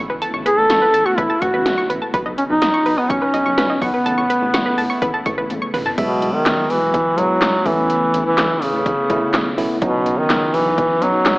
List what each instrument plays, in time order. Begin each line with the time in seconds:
Already playing: analog synth bass A1, string machine C#3 A3 B3 E4
0.10 synth arpeggio sound B4
0.22 synth arpeggio sound A5, closed hi-hat
0.34 analog synth bass A1, synth arpeggio sound C#6
0.46 duduk G#4, synth arpeggio sound B4, closed hi-hat
0.58 analog synth bass A1, duduk A4
0.70 analog synth bass A1, synth arpeggio sound C#6, snare, closed hi-hat
0.82 synth arpeggio sound B4
0.94 analog synth bass A1, synth arpeggio sound A5, closed hi-hat
1.06 duduk F#4, synth arpeggio sound C#6
1.18 analog synth bass A1, duduk E4, synth arpeggio sound B4, kick, closed hi-hat
1.30 synth arpeggio sound A5
1.42 analog synth bass A1, duduk F#4, synth arpeggio sound C#6, kick, closed hi-hat
1.54 analog synth bass A1, synth arpeggio sound B4
1.66 analog synth bass A1, snare, closed hi-hat
1.78 synth arpeggio sound C#6
1.90 analog synth bass A1, synth arpeggio sound B4, closed hi-hat
2.02 synth arpeggio sound A5
2.14 analog synth bass B1, string machine C#3 F#3 B3 D#4, synth arpeggio sound B4, kick, closed hi-hat
2.26 analog synth bass B1, synth arpeggio sound D#5
2.38 duduk C#4, closed hi-hat
2.50 analog synth bass B1, duduk D#4
2.62 analog synth bass B1, synth arpeggio sound D#5, snare, closed hi-hat
2.74 synth arpeggio sound C#6
2.86 analog synth bass B1, synth arpeggio sound B4, open hi-hat
2.98 duduk B3, synth arpeggio sound D#5
3.10 analog synth bass B1, duduk C#4, synth arpeggio sound C#6, kick, closed hi-hat
3.22 synth arpeggio sound B4
3.34 analog synth bass B1, synth arpeggio sound D#5, closed hi-hat
3.46 analog synth bass B1, synth arpeggio sound C#6
3.58 analog synth bass B1, synth arpeggio sound B4, snare, closed hi-hat
3.70 synth arpeggio sound D#5
3.82 analog synth bass B1, duduk B3, synth arpeggio sound C#6, kick, open hi-hat
3.94 synth arpeggio sound B4
4.06 analog synth bass A1, string machine C#3 A3 E4, synth arpeggio sound A5, closed hi-hat
4.18 analog synth bass A1, synth arpeggio sound C#6
4.30 synth arpeggio sound B4, closed hi-hat
4.42 analog synth bass A1
4.54 analog synth bass A1, synth arpeggio sound C#6, snare, closed hi-hat
4.66 synth arpeggio sound B4
4.78 analog synth bass A1, synth arpeggio sound A5, open hi-hat
4.90 synth arpeggio sound C#6
5.02 analog synth bass A1, synth arpeggio sound B4, kick, closed hi-hat
5.14 synth arpeggio sound A5
5.26 analog synth bass A1, synth arpeggio sound C#6, kick, closed hi-hat
5.38 analog synth bass A1, synth arpeggio sound B4
5.50 analog synth bass A1, closed hi-hat, high tom
5.62 synth arpeggio sound C#6
5.74 analog synth bass A1, synth arpeggio sound B4, mid tom, open hi-hat
5.86 synth arpeggio sound A5, floor tom
5.98 analog synth bass E1, duduk B2, string machine F#3 G#3 B3 F#4, tine electric piano F#3 G#3 B3 E5, kick, closed hi-hat, crash
6.22 analog synth bass E1, closed hi-hat
6.34 duduk D#3
6.46 analog synth bass E1, snare, clap, closed hi-hat
6.70 analog synth bass E1, duduk E3, open hi-hat
6.82 analog synth bass E1
6.94 analog synth bass E1, kick, closed hi-hat
7.18 analog synth bass E1, tine electric piano F#3 G#3 B3 E4, duduk F#3, closed hi-hat
7.42 analog synth bass F#1, snare, clap, closed hi-hat
7.66 analog synth bass A1, string machine C#3 A3 E4, duduk E3, tine electric piano A3 B3 C#4 E4, kick, open hi-hat
7.90 closed hi-hat
8.14 analog synth bass A1, closed hi-hat
8.26 duduk E3
8.38 analog synth bass A1, snare, clap, closed hi-hat
8.62 analog synth bass A1, duduk C#3, open hi-hat
8.74 analog synth bass A1
8.86 analog synth bass A1, kick, closed hi-hat
9.10 analog synth bass A1, tine electric piano A3 B3 C#4 E4, kick, closed hi-hat
9.34 analog synth bass A1, snare, clap, closed hi-hat
9.58 analog synth bass B1, tine electric piano A3 B3 C#4 E4, open hi-hat
9.82 analog synth bass B1, duduk B2, tine electric piano F#3 B3 C#4 D#4, string machine F#3 D#4, kick, closed hi-hat
10.06 analog synth bass B1, closed hi-hat
10.18 duduk D#3
10.30 analog synth bass B1, snare, clap, closed hi-hat
10.54 analog synth bass B1, duduk E3, open hi-hat
10.66 analog synth bass B1
10.78 analog synth bass B1, kick, closed hi-hat
11.02 analog synth bass B1, duduk F#3, tine electric piano F#3 B3 C#4 D#4, closed hi-hat
11.26 analog synth bass C#2, snare, clap, closed hi-hat